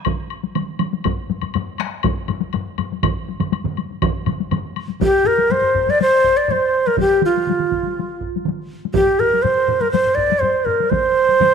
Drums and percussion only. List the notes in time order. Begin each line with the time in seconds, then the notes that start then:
0.05 taiko, taiko mid, taiko high, high woodblock
0.30 high woodblock
0.43 taiko high
0.55 taiko mid, taiko high, high woodblock
0.79 taiko mid, taiko high, high woodblock
0.93 taiko high
1.04 taiko, taiko low-mid, taiko high, high woodblock
1.30 taiko low-mid, taiko high
1.42 taiko low-mid, taiko high, high woodblock
1.54 taiko low-mid, taiko high, high woodblock
1.78 taiko rim, taiko high, high woodblock
2.03 taiko, taiko low-mid, taiko high, high woodblock
2.28 taiko low-mid, taiko high, high woodblock
2.41 taiko high
2.53 taiko low-mid, taiko high, high woodblock
2.78 taiko low-mid, taiko high, high woodblock
2.92 taiko high
3.03 taiko, taiko low-mid, taiko mid, taiko high, high woodblock
3.28 taiko high
3.40 taiko low-mid, taiko mid, taiko high, high woodblock
3.52 taiko high, high woodblock
3.64 taiko low-mid, taiko mid
3.77 taiko high, high woodblock
3.91 taiko high
4.02 taiko, taiko low-mid, taiko mid, taiko high, high woodblock
4.26 taiko low-mid, taiko mid, taiko high, high woodblock
4.40 taiko high
4.51 taiko low-mid, taiko mid, taiko high, high woodblock
4.76 taiko high, high woodblock
4.88 taiko high
5.00 taiko, taiko low-mid, taiko high
5.24 taiko low-mid
5.38 taiko high
5.49 taiko low-mid, taiko high
5.62 taiko low-mid
5.74 taiko, taiko low-mid
5.87 taiko low-mid, taiko high
6.01 taiko high
6.24 taiko
6.48 taiko low-mid, taiko high
6.87 taiko high
6.97 taiko, taiko mid, taiko high
7.22 taiko mid
7.37 taiko high
7.47 taiko mid, taiko high
7.59 taiko mid
7.72 taiko, taiko mid
7.83 taiko mid, taiko high
7.99 taiko high
8.21 taiko
8.36 taiko high
8.45 taiko mid, taiko high
8.85 taiko high
8.94 taiko, taiko low-mid, taiko high
9.07 taiko low-mid
9.19 taiko low-mid
9.33 taiko high
9.44 taiko low-mid, taiko high
9.68 taiko low-mid
9.82 taiko high
9.93 taiko low-mid, taiko high
10.05 taiko low-mid
10.16 taiko, taiko low-mid
10.30 taiko low-mid, taiko high
10.42 taiko low-mid, taiko high
10.66 taiko low-mid
10.80 taiko high
10.91 taiko, taiko low-mid, taiko mid, taiko high
11.29 taiko high
11.40 taiko low-mid, taiko mid, taiko high